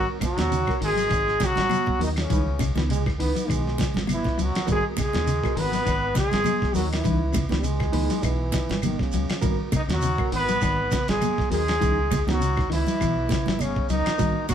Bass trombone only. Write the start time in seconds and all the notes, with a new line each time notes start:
2.91 G#3
3.20 B3
3.49 G#3
7.59 G3
7.64 G#3
8.23 E3
8.84 D#3
9.01 C#3